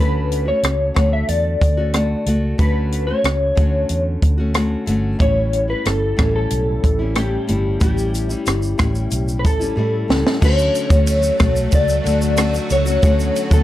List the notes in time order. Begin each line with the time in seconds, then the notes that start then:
Already playing: D3 A3
0.00 D2 C#4 F#4 B4
0.32 closed hi-hat
0.45 A3 C#4 F#4 C#5
0.63 C#2, cross-stick, closed hi-hat
0.94 D2 D3 A3 F#4, kick, cross-stick, closed hi-hat
1.13 E5
1.28 E2 D5, closed hi-hat
1.61 D2, kick, closed hi-hat
1.77 A3 C#4 F#4
1.93 D3 A3 F#4, cross-stick, closed hi-hat
2.26 C#2 A3 F#4, closed hi-hat
2.58 D2 D3 A3 C#4 F#4 B4, kick, closed hi-hat
2.92 closed hi-hat
3.07 A3 C#4 F#4 C#5
3.24 C#2, cross-stick, closed hi-hat
3.55 D2 D3 A3 C#4 F#4, kick, closed hi-hat
3.89 E2, closed hi-hat
4.22 D2, kick, closed hi-hat
4.38 A3 C#4 F#4
4.54 D3 A3 C#4 F#4, cross-stick, closed hi-hat
4.86 G1 D3 A3 C#4 F#4, closed hi-hat
5.19 A1 A2 G3 C#4 E4 C#5, kick, closed hi-hat
5.53 closed hi-hat
5.68 G3 C#4 E4 B4
5.85 G1 A4, cross-stick, closed hi-hat
6.17 A1 A2 G3 C#4 E4, kick, cross-stick, closed hi-hat
6.36 A4
6.50 B1, closed hi-hat
6.84 A1, kick, closed hi-hat
6.99 G3 C#4 E4
7.15 A2 G3 C#4 E4 G4, cross-stick, closed hi-hat
7.47 G1 A2 G3 C#4 E4, closed hi-hat
7.80 A1 A2 G3 C#4 E4 G4, kick, closed hi-hat, shaker
7.98 shaker
8.15 closed hi-hat, shaker
8.29 G3 C#4 E4, shaker
8.46 G1, cross-stick, closed hi-hat, shaker
8.62 shaker
8.78 A1 A2 G3 C#4 E4, kick, cross-stick, closed hi-hat, shaker
8.95 shaker
9.11 B1, closed hi-hat, shaker
9.28 shaker
9.39 B4
9.45 A1 A4, kick, closed hi-hat, shaker
9.59 G3 C#4 E4, shaker
9.76 A2 G3 C#4 E4
10.08 C#2 A2 G3 C#4 E4, snare
10.27 snare
10.41 D2 D3 F#3 A3 C#4 F#4, kick, crash, shaker
10.45 C#5
10.58 shaker
10.75 ride, shaker
10.89 D2 A3 C#4 F#4, kick, shaker
11.07 ride, shaker
11.23 shaker
11.39 B1 A3 F#4, kick, cross-stick, ride, shaker
11.56 shaker
11.72 C#2 D5, kick, ride, shaker
11.88 shaker
12.04 D2 D3 A3 F#4, ride, shaker
12.21 shaker
12.36 D3 A3 F#4, cross-stick, ride, shaker
12.54 shaker
12.70 C#2 C#5, ride, shaker
12.85 A3 C#4 F#4, shaker
13.02 D2 D3 A3 B3 C#4 F#4, kick, ride, shaker
13.19 shaker
13.36 ride, shaker
13.50 D2 A3 C#4 F#4 A4, kick, shaker